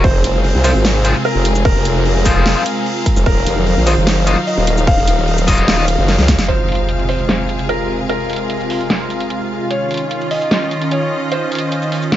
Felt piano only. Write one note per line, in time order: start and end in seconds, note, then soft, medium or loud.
0.04 0.57 C5 loud
0.64 1.17 C5 medium
1.25 1.52 A#4 loud
1.65 3.18 A#4 loud
3.26 3.79 A#4 loud
3.87 4.39 C5 loud
4.47 4.74 D#5 medium
4.87 6.40 F5 loud
6.48 7.01 C5 medium
7.09 7.61 C5 medium
7.69 7.96 A#4 medium
8.09 9.63 A#4 medium
9.70 10.23 C#5 medium
10.31 10.83 D#5 medium
10.91 11.18 C#5 medium
11.32 12.17 C5 medium